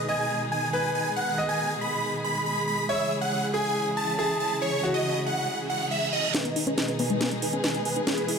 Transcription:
0.00 2.86 B2 medium
0.00 2.86 D#3 medium
0.00 6.30 G#3 medium
0.00 2.86 D#4 medium
0.00 6.30 G#4 medium
0.09 0.65 D#5 medium
0.09 0.40 G#5 medium
0.52 0.68 G#5 medium
0.73 1.29 B4 medium
0.73 0.89 G#5 medium
0.95 1.11 G#5 medium
1.16 1.40 F#5 loud
1.38 2.80 D#5 medium
1.49 1.73 G#5 loud
1.81 2.13 B5 medium
2.24 2.40 B5 medium
2.46 2.62 B5 medium
2.68 2.83 B5 medium
2.89 6.31 C#3 medium
2.89 6.31 E3 medium
2.89 6.31 E4 medium
2.89 3.45 C#5 medium
2.89 3.13 E5 medium
3.21 3.45 F#5 loud
3.54 4.10 G#4 medium
3.54 3.86 G#5 loud
3.97 4.13 A5 medium
4.19 4.75 G#4 medium
4.19 4.34 A5 medium
4.40 4.56 A5 medium
4.62 4.85 C#5 loud
4.83 6.26 F#4 medium
4.94 5.18 D#5 medium
5.26 5.58 F#5 loud
5.48 reverse cymbal medium
5.70 5.85 F#5 medium
5.91 6.07 E5 medium
6.13 6.29 D#5 medium
6.34 8.05 B2 medium
6.34 8.05 D#3 medium
6.34 8.39 G#3 medium
6.34 6.37 C#4 loud
6.34 8.05 D#4 medium
6.34 8.39 G#4 medium
6.34 6.58 B4 medium
6.34 6.58 D#5 loud
6.34 snare soft
6.34 closed hi-hat medium
6.34 riser medium
6.45 6.51 B3 medium
6.45 closed hi-hat medium
6.56 6.60 D#4 medium
6.56 open hi-hat loud
6.67 6.71 C#4 loud
6.67 6.90 B4 medium
6.67 6.91 D#5 loud
6.67 closed hi-hat medium
6.78 6.82 C#4 medium
6.78 snare medium
6.78 closed hi-hat medium
6.88 6.94 C#4 medium
6.88 closed hi-hat medium
6.99 7.02 B3 medium
6.99 7.31 B4 medium
6.99 7.31 G#5 medium
6.99 open hi-hat medium
7.10 7.16 G#3 medium
7.10 closed hi-hat medium
7.21 7.25 B3 medium
7.21 snare medium
7.21 closed hi-hat medium
7.31 7.36 G#3 medium
7.31 closed hi-hat medium
7.42 7.46 D#4 medium
7.42 7.58 B4 medium
7.42 7.58 G#5 medium
7.42 open hi-hat loud
7.53 7.57 C#4 loud
7.53 closed hi-hat medium
7.64 7.68 C#4 medium
7.64 7.80 B4 medium
7.64 7.80 G#5 medium
7.64 snare medium
7.64 closed hi-hat medium
7.75 7.81 D#4 medium
7.75 closed hi-hat medium
7.85 7.88 G#4 medium
7.85 8.01 B4 medium
7.85 8.01 G#5 medium
7.85 open hi-hat medium
7.96 7.99 D#4 medium
7.96 closed hi-hat medium
8.07 8.39 B2 medium
8.07 8.39 E3 medium
8.07 8.09 C#4 loud
8.07 8.39 E4 medium
8.07 8.31 G#4 medium
8.07 8.31 B4 medium
8.07 snare medium
8.07 closed hi-hat medium
8.18 8.24 B3 medium
8.18 closed hi-hat medium
8.28 8.32 E4 medium
8.28 open hi-hat loud

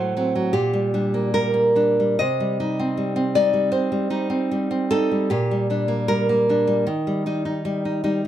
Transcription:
0.00 0.50 A2 soft
0.00 0.15 F#3 soft
0.00 0.54 A3 soft
0.00 0.52 C5 medium
0.17 0.34 F#3 soft
0.17 0.51 C4 soft
0.35 0.54 F#3 soft
0.53 2.15 A#2 soft
0.53 1.29 G4 medium
0.73 0.93 G3 soft
0.94 1.33 G3 soft
0.94 1.75 D4 soft
1.14 1.52 A#3 soft
1.34 1.74 G3 soft
1.34 2.16 A#4 medium
1.54 2.19 A#3 soft
1.76 1.99 G3 soft
1.76 2.15 D4 soft
2.00 2.20 G3 soft
2.19 3.69 C3 medium
2.19 3.31 D#5 medium
2.40 2.59 G3 soft
2.60 2.96 G3 soft
2.60 3.36 D#4 soft
2.79 3.15 C4 soft
2.97 3.35 G3 soft
3.16 3.71 C4 soft
3.35 3.52 G3 soft
3.35 4.09 D#4 soft
3.35 3.71 D5 medium
3.53 3.91 G3 soft
3.72 4.29 C4 soft
3.72 4.85 C5 medium
3.92 4.09 G3 soft
4.10 4.50 G3 soft
4.10 4.91 D#4 soft
4.30 4.70 C4 soft
4.51 4.91 G3 soft
4.71 5.30 C4 soft
4.91 5.10 G3 soft
4.91 5.27 D#4 medium
4.91 5.29 A4 medium
5.11 5.31 G3 soft
5.30 6.83 A#2 medium
5.30 6.05 G4 medium
5.51 5.69 G3 soft
5.70 6.08 G3 soft
5.70 6.49 D4 soft
5.88 6.28 A#3 soft
6.08 6.48 G3 medium
6.08 7.21 A#4 medium
6.29 6.87 A#3 soft
6.49 6.66 G3 soft
6.49 6.84 D4 soft
6.67 6.87 G3 soft
6.87 8.28 D#3 medium
7.07 7.25 G3 soft
7.26 7.64 G3 soft
7.26 7.44 D#4 soft
7.45 7.84 D#4 soft
7.65 8.02 G3 medium
7.85 8.03 D#4 soft
8.04 8.24 G3 soft
8.04 8.28 D#4 medium

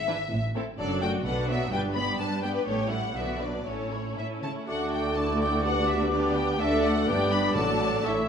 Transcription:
0.00 0.21 G#1 medium
0.00 0.21 G#2 medium
0.00 0.42 E5 medium
0.08 0.15 E3 soft
0.08 0.15 D4 soft
0.08 0.16 E4 soft
0.08 0.16 B4 soft
0.31 0.68 A1 medium
0.31 0.69 A2 medium
0.55 0.63 A3 soft
0.55 0.63 C4 medium
0.55 0.63 E4 soft
0.55 0.64 A4 soft
0.78 1.17 F#1 medium
0.78 1.19 F#2 medium
0.78 1.00 F#3 soft
0.78 1.00 D4 soft
0.78 1.01 A4 soft
0.78 1.00 D5 medium
1.01 1.25 A3 soft
1.01 1.25 F#4 soft
1.01 1.25 D5 soft
1.01 1.10 G5 medium
1.24 1.64 B1 medium
1.24 1.66 B2 medium
1.24 1.47 D3 soft
1.24 1.47 D4 soft
1.24 1.47 B4 soft
1.24 1.48 F#5 medium
1.49 1.72 F#3 soft
1.49 1.72 B3 soft
1.49 1.72 F#4 soft
1.49 1.72 D5 soft
1.49 1.72 E5 medium
1.72 2.11 G1 soft
1.72 2.13 G2 medium
1.72 1.94 G3 soft
1.72 1.94 D4 soft
1.72 1.94 B4 soft
1.72 1.80 G5 medium
1.95 2.19 B3 soft
1.95 2.20 G4 soft
1.95 2.19 D5 soft
1.95 2.18 B5 medium
2.19 2.61 G2 medium
2.19 2.43 G3 soft
2.19 2.43 D4 soft
2.19 2.43 B4 soft
2.19 2.42 A5 medium
2.43 2.66 B3 soft
2.43 2.67 G4 soft
2.43 2.67 D5 soft
2.43 2.54 G5 medium
2.55 2.66 B4 soft
2.66 3.07 A1 soft
2.66 3.09 A2 soft
2.66 2.89 A3 soft
2.66 2.89 C#4 soft
2.66 2.90 G4 soft
2.66 2.90 A4 soft
2.66 2.90 C#5 medium
2.90 3.15 G3 soft
2.90 3.15 A3 soft
2.90 3.15 E4 soft
2.90 3.15 G4 soft
2.90 3.16 F#5 medium
3.15 3.58 B1 soft
3.15 3.60 B2 soft
3.15 3.39 D3 soft
3.15 3.39 B3 soft
3.15 3.40 F#4 soft
3.15 3.40 D5 soft
3.15 3.41 E5 soft
3.40 3.66 F#3 soft
3.40 3.66 D4 soft
3.40 3.66 B4 soft
3.40 3.67 D5 soft
3.65 4.09 A1 soft
3.65 4.11 A2 soft
3.65 3.90 C#4 soft
3.65 3.90 E4 soft
3.65 3.90 A4 soft
3.65 4.18 C#5 soft
3.92 4.17 A3 soft
3.92 4.17 C#4 soft
3.92 4.18 E4 soft
3.92 4.17 C#5 soft
4.17 4.25 A2 soft
4.17 4.43 C#4 soft
4.17 4.43 E4 soft
4.17 4.43 A4 soft
4.17 4.26 E5 soft
4.43 4.51 C#3 soft
4.43 4.67 A3 soft
4.43 4.68 C#4 soft
4.43 4.68 E4 soft
4.43 4.68 C#5 soft
4.43 4.51 A5 soft
4.67 6.56 D2 soft
4.67 5.60 A3 soft
4.67 6.08 A3 soft
4.67 5.65 A3 soft
4.67 6.56 D4 soft
4.67 5.13 D4 soft
4.67 5.66 F#4 soft
4.67 5.13 F#4 soft
4.67 5.13 A4 soft
4.67 6.56 D5 soft
4.67 4.92 F#5 medium
4.67 6.56 D6 soft
4.92 5.16 G5 medium
5.16 5.65 E4 soft
5.16 6.11 F#4 soft
5.16 6.11 D5 soft
5.16 5.40 A5 medium
5.40 5.64 G5 soft
5.64 6.59 B3 soft
5.64 6.60 B3 soft
5.64 6.11 D4 soft
5.64 6.60 G4 soft
5.64 5.87 F#5 medium
5.87 6.12 E5 medium
6.11 6.59 B3 soft
6.11 6.59 D4 soft
6.11 6.59 G4 soft
6.11 6.59 B4 soft
6.11 6.35 D5 medium
6.35 6.59 G5 medium
6.59 7.04 D2 medium
6.59 7.04 D2 soft
6.59 7.09 A3 soft
6.59 7.04 A3 soft
6.59 7.05 A3 soft
6.59 7.04 D4 soft
6.59 7.05 D4 medium
6.59 7.04 A4 medium
6.59 7.09 A4 medium
6.59 8.06 D5 medium
6.59 7.04 D5 medium
6.59 6.84 E5 medium
6.59 8.06 D6 medium
6.84 7.08 F#5 medium
7.07 7.56 G1 soft
7.07 7.56 G2 medium
7.07 7.57 G3 soft
7.07 7.56 B3 soft
7.07 7.56 B3 medium
7.07 7.55 D4 soft
7.07 7.55 D4 medium
7.07 7.55 G4 soft
7.07 7.57 B4 medium
7.07 7.54 D5 medium
7.07 7.31 G5 medium
7.31 7.55 B5 medium
7.55 8.04 A1 soft
7.55 8.01 A2 medium
7.55 8.03 A2 soft
7.55 8.05 F#3 soft
7.55 8.03 A3 soft
7.55 8.04 D4 soft
7.55 8.04 F#4 soft
7.55 8.29 A4 soft
7.55 8.04 D5 soft
7.55 8.03 A5 medium
8.04 8.29 A1 soft
8.04 8.29 A2 soft
8.04 8.29 A3 soft
8.04 8.13 A3 soft
8.04 8.29 A3 soft
8.04 8.29 C#4 soft
8.04 8.29 E4 soft
8.04 8.13 A4 soft
8.04 8.29 C#5 soft
8.04 8.29 E5 medium
8.04 8.29 E6 soft

